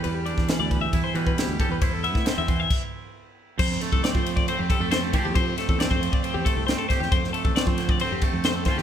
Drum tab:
CC |----------------|--------x-------|x---------------|----------------|
RD |x-x-x-x-x-x-x-x-|x-x-x-x---------|--x-x-x-x-x-x-x-|x-x-x-x-x-x-x-x-|
SD |---oo-------o---|---oo-----------|-oo-o-------o---|--o-o-------o-oo|
BD |---o--o-o--o--o-|o--o--o-o-------|o--o-o-o--o---o-|o--o-o-o--o---o-|

CC |----------------|
RD |x-x-x-x-x-x-x-x-|
SD |-o--o-o-----o-oo|
BD |o--o-o-o--o---o-|